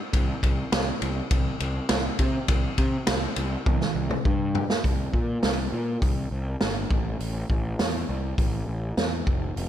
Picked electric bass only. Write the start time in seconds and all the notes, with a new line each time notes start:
0.14 C2
0.43 C2
0.72 C2
1.02 C2
1.31 C2
1.60 C2
1.90 C2
2.19 C3
2.49 C2
2.78 C3
3.08 C2
3.37 C2
3.66 C2
3.95 C2
4.25 G2
4.84 C2
5.14 A#2
5.43 C2
5.72 A#2
6.02 C2
6.31 C2
6.61 G1
6.91 A1
7.19 A1
7.50 A1
7.80 E2
8.09 C2
8.38 A1
8.68 A1
8.97 E2
9.27 F1
9.56 F1